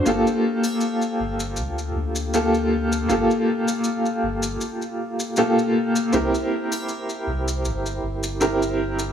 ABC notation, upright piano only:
X:1
M:4/4
L:1/8
Q:"Swing 16ths" 1/4=79
K:Gdor
V:1 name="Upright piano"
[B,FGA]6 [B,FGA]2 | [B,FGA]6 [B,FGA]2 | [CEGB]6 [CEGB]2 |]